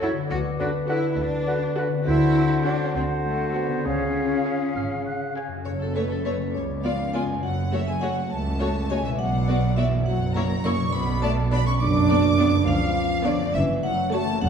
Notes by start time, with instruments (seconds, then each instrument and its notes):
Already playing: double bass section C#2, harp F#2 C#4 F#4 A4, french horn section A4 C#5
0.01 bassoon F#3, cello section E4, viola section A4, clarinet A4, oboe C#5, violin section C#5 F#5, flute F#5
0.13 harp D3
0.17 harp B3
0.22 harp F#4
0.26 harp D5
0.31 double bass section D2, cello section F#4, french horn section F#4 B4
0.59 bassoon D3, cello section D4, clarinet F#4, oboe B4, flute F#5
0.89 bassoon D3, cello section E4, clarinet F#4, viola section F#4, violin section B4 F#5, oboe B4, flute F#5
1.12 cello section E4
1.18 double bass section D2, cello section D4
1.47 bassoon D3, clarinet F#4, oboe B4, flute F#5
1.76 bassoon D3, viola section F#4, clarinet F#4, violin section B4 F#5, oboe B4, flute F#5
1.88 harp D3
1.93 harp C4
1.97 harp F#4
2.02 bassoon D3, harp C5
2.06 double bass section D2, cello section E4, clarinet F#4, oboe C5, french horn section C5, flute F#5
2.65 cello section D4, viola section F#4, violin section C5 F#5
2.95 double bass section D2, bassoon D3, cello section C4, clarinet F#4, oboe C5, flute F#5
3.25 cello section A3
3.55 cello section B3, viola section F#4, violin section C5 F#5
3.68 harp C#3
3.72 harp C#4
3.77 harp F4
3.81 harp G#4, clarinet G#4, oboe C#5
3.85 double bass section C#2, bassoon C#3, cello section C#4, french horn section F4 C#5, flute F5
4.45 viola section G#4, violin section C#5 F5
4.76 double bass section G#1, oboe F5
5.06 oboe F#5
5.36 viola section G#4, violin section C#5 F5, oboe G#5
5.48 harp F#2
5.52 harp C#4
5.57 harp F#4
5.61 harp A4, violin section C#5, vibraphone C#5
5.66 double bass section F#1, cello section F#2, french horn section C#3
5.80 french horn section A2, violin section A4, vibraphone A4
5.95 french horn section B2, viola section A3 A4, violin section B4 C#5, vibraphone B4
6.11 french horn section A2, violin section A4, vibraphone A4
6.25 french horn section B2, viola section A3 A4, vibraphone B4, violin section B4 C#5
6.37 harp C#3
6.41 harp B3
6.46 harp F4
6.50 harp D5
6.54 cello section C#2, double bass section C#2, french horn section C#3, vibraphone C#5, violin section C#5
6.84 french horn section F3, viola section B3 F4, violin section D5 F5, vibraphone F5
7.13 french horn section G#3, viola section B3 F4, violin section D5 G#5, vibraphone G#5
7.25 harp F#2
7.29 harp A3
7.34 harp F#4
7.39 harp C#5
7.43 double bass section F#1, cello section F#2, french horn section F#3, vibraphone F#5, violin section F#5
7.71 french horn section E3, viola section A3 F#4, violin section C#5 E5, vibraphone E5
7.88 french horn section G#3, vibraphone G#5, violin section G#5
8.01 french horn section F#3, viola section A3 F#4, violin section C#5 F#5, vibraphone F#5
8.30 double bass section C#2, cello section C#2, french horn section A3, vibraphone A5, violin section A5
8.60 viola section A3 F#4, violin section C#5
8.89 french horn section G#3, viola section A3 F#4, violin section C#5 G#5, vibraphone G#5
9.01 harp B2, french horn section E3, violin section E5
9.05 harp B3, vibraphone E5
9.10 harp F#4
9.14 harp D5
9.19 double bass section B1, cello section B2, french horn section F#3, vibraphone F#5, violin section F#5
9.48 viola section B3 F#4, violin section D5
9.76 french horn section E3, viola section B3 F#4, violin section D5 E5, vibraphone E5
9.88 harp F#2
9.93 harp A#3
9.97 harp E4
10.02 cello section F#2, harp C#5, vibraphone F#5
10.06 double bass section F#1, french horn section F#3, violin section F#5
10.34 viola section A#3 E4, french horn section A#3, violin section C#5 A#5, vibraphone A#5
10.64 viola section A#3 E4, french horn section C#4, violin section C#5 C#6, vibraphone C#6
10.76 harp B2
10.80 harp B3
10.85 harp D4
10.89 cello section B2, harp D5, vibraphone B5
10.93 double bass section B1, french horn section B3, violin section B5
11.22 french horn section A3, viola section B3 D4, violin section D5 A5, vibraphone A5
11.51 viola section B3 D4, french horn section B3, violin section D5 B5, vibraphone B5
11.66 french horn section C#4, violin section C#6, vibraphone C#6
11.80 double bass section F#1, cello section F#2, french horn section D4, violin section D6, vibraphone D6
12.09 viola section B3 D4, violin section D5
12.39 viola section B3 D4, violin section D5
12.50 harp C#3
12.55 harp B3
12.59 harp D4
12.63 harp C#5, violin section F5
12.68 double bass section C#2, cello section C#3, french horn section F3, vibraphone F5
13.25 french horn section D3, viola section B3 D4, violin section C#5 D5, vibraphone D5
13.37 harp F#2
13.41 harp A3
13.46 harp F#4
13.50 cello section F#2, harp C#5, vibraphone E5
13.54 double bass section F#1, french horn section E3, violin section E5
13.83 french horn section F#3, vibraphone F#5, violin section F#5
14.12 viola section A3 F#4, french horn section A3, violin section C#5 A5, vibraphone A5
14.24 harp E3
14.29 harp A#3
14.33 harp F#4
14.38 harp C#5, vibraphone F#5
14.42 double bass section E1, cello section E2, french horn section F#3, violin section F#5